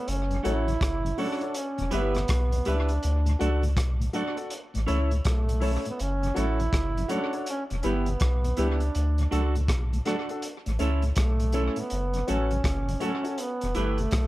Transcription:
Already playing: B3
0.08 F#1 C#4, closed hi-hat
0.30 F#2 C#3, closed hi-hat
0.43 A1 F#3 A3 C#4 E4 F#4 A4 C#5, closed hi-hat
0.68 F#2 C#3, closed hi-hat
0.81 F#1, kick, cross-stick, closed hi-hat
1.04 F#2 C#3, closed hi-hat
1.17 F#3 A3 C#4 D4 F#4 A4 C#5, open hi-hat
1.41 F#4 A4 C#5, closed hi-hat
1.54 C#4, closed hi-hat
1.78 E1 E2 B2, closed hi-hat
1.91 G1 G3 B3 E4 G4 B4 E5, closed hi-hat
2.15 E2 B2, cross-stick, closed hi-hat
2.28 B1, kick, cross-stick, closed hi-hat
2.52 E2 B2, closed hi-hat
2.65 C#2 G3 B3 D4 E4 G4 B4 E5, closed hi-hat
2.89 closed hi-hat
3.03 D2, closed hi-hat
3.26 D2 A2, closed hi-hat
3.39 C#2 F#3 A3 D4 F#4 A4 D5, closed hi-hat
3.62 D2 A2, closed hi-hat
3.77 B1, kick, cross-stick, closed hi-hat
4.00 D2 A2, closed hi-hat
4.13 F#3 A3 D4 F#4 A4 D5, closed hi-hat
4.36 F#4 A4 D5, closed hi-hat
4.50 closed hi-hat
4.74 A1 A2, closed hi-hat
4.86 C#2 E3 A3 C#4 E4 A4 C#5, closed hi-hat
5.11 A2, closed hi-hat
5.25 B1 A3, kick, cross-stick, closed hi-hat
5.48 A2, closed hi-hat
5.60 E3 A3 C#4 E4 A4 C#5, open hi-hat
5.85 A2 B3, muted clean electric guitar stroke, closed hi-hat
5.99 F#1 C#4, closed hi-hat
6.23 F#2 C#3, closed hi-hat
6.34 A1 F#3 A3 C#4 F#4 A4 C#5, closed hi-hat
6.39 E4
6.60 F#2 C#3, closed hi-hat
6.73 F#1, kick, cross-stick, closed hi-hat
6.97 F#2 C#3, closed hi-hat
7.08 F#3 A3 C#4 F#4 A4 C#5, closed hi-hat
7.13 D4
7.33 F#4 A4 C#5, closed hi-hat
7.46 C#4, closed hi-hat
7.70 E1 E2 B2, closed hi-hat
7.81 G3 B3 C#4 E4 G4 B4, closed hi-hat
7.85 G1 B3 E4 G4
8.06 E2 B2, closed hi-hat
8.20 B1, kick, cross-stick, closed hi-hat
8.44 E2 B2, closed hi-hat
8.57 C#2 G3 B3 D4 E4 G4 B4, closed hi-hat
8.80 muted clean electric guitar stroke, closed hi-hat
8.95 D2, closed hi-hat
9.18 D2 A2, closed hi-hat
9.31 C#2 F#3 A3 D4 F#4 A4, closed hi-hat
9.55 D2 A2, closed hi-hat
9.68 B1, kick, cross-stick, closed hi-hat
9.93 D2 A2, closed hi-hat
10.05 F#3 A3 D4 F#4 A4, cross-stick, closed hi-hat
10.29 D4 F#4 A4, closed hi-hat
10.42 closed hi-hat
10.66 A1 A2, closed hi-hat
10.79 C#2 E3 A3 C#4 E4 A4, closed hi-hat
11.02 A2, closed hi-hat
11.16 B1 A3, kick, cross-stick, closed hi-hat
11.40 A2, closed hi-hat
11.52 E3 A3 C#4 E4 A4, closed hi-hat
11.76 A2 B3, closed hi-hat
11.90 F#1, closed hi-hat
12.14 F#2 C#3, closed hi-hat
12.27 A1 F#3 A3 C#4 F#4 A4, closed hi-hat
12.51 F#2 C#3, closed hi-hat
12.64 F#1, kick, cross-stick, closed hi-hat
12.88 F#2 C#3, closed hi-hat
13.00 F#3 A3 C#4 F#4 A4, closed hi-hat
13.05 C#4
13.24 C#4 F#4 A4, closed hi-hat
13.38 B3, closed hi-hat
13.61 E1 E2 B2, closed hi-hat
13.75 G1 G3 A3 B3 E4 G4 B4, closed hi-hat
13.98 E2 B2, closed hi-hat
14.11 B1, kick, cross-stick, closed hi-hat

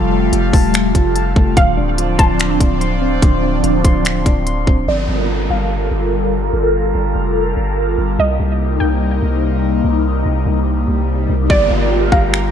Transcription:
Already playing: F1 F3 G3 A3 F4 A5
0.12 F4
0.32 F1 G4, closed hi-hat
0.53 D#1 A5, kick, open hi-hat
0.74 finger snap, closed hi-hat
0.95 F1 F4, kick, closed hi-hat
1.16 A5, closed hi-hat
1.36 F1 A3, kick
1.57 D1 D3 F3 C4 D4 F5, kick, closed hi-hat
1.77 D1 D4
1.98 F4, closed hi-hat
2.18 D1 A5 C6, kick, closed hi-hat
2.40 finger snap, closed hi-hat
2.60 D1 D4, kick, closed hi-hat
2.81 C6, closed hi-hat
3.01 C4
3.22 D1 D3, kick, closed hi-hat
3.43 D4
3.64 D1 F4, closed hi-hat
3.85 D1 C6, kick, closed hi-hat
4.05 finger snap, closed hi-hat
4.26 D1 D4, kick, closed hi-hat
4.46 C6, closed hi-hat
4.67 D1 C4, kick
4.88 G1 G3 F4 A4 A#4 D5, downlifter
5.09 G1
5.50 G1 F5
5.91 G1
6.53 G1
6.95 G1
7.15 F1
7.57 G1
7.98 G1
8.19 C2 C3 A#3 D#4 D#5, swell
8.40 C2
8.80 C2 G5
9.22 C2
9.84 C2
10.26 C2
10.46 C2
10.88 C2
11.29 C2
11.50 G1 G3 F4 G4 A#4 D5, kick, downlifter
11.71 G1 F4
11.91 G4
12.12 G1 F5 A#5, kick
12.34 finger snap

